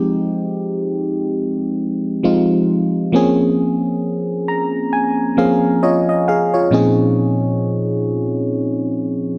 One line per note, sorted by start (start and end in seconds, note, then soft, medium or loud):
0.00 2.19 F3 medium
0.00 2.20 G#3 medium
0.00 2.20 C4 medium
0.00 2.20 D#4 medium
0.00 2.24 G4 medium
2.23 3.11 F3 medium
2.23 3.13 G#3 medium
2.23 3.13 C4 medium
2.23 3.14 D#4 medium
2.23 3.14 F4 medium
3.12 5.33 F3 medium
3.12 5.33 A#3 medium
3.12 5.34 C4 medium
3.12 5.34 C#4 medium
3.12 5.34 G#4 medium
4.48 4.90 A#5 medium
4.93 5.34 G#5 medium
5.37 6.70 F3 medium
5.37 6.72 A#3 soft
5.37 6.71 C4 medium
5.37 6.71 C#4 soft
5.37 5.83 G#4 medium
5.37 5.79 F5 medium
5.83 6.07 F4 medium
5.83 6.07 C#5 medium
5.83 6.08 D#5 medium
6.09 6.26 D#5 medium
6.28 6.52 G#4 medium
6.28 6.52 F5 medium
6.54 6.96 F4 medium
6.54 6.96 C#5 medium
6.71 9.38 A#2 medium
6.71 9.38 F3 medium
6.71 9.38 C4 medium
6.71 9.38 C#4 medium
6.71 9.38 D#4 medium
6.71 9.38 G#4 medium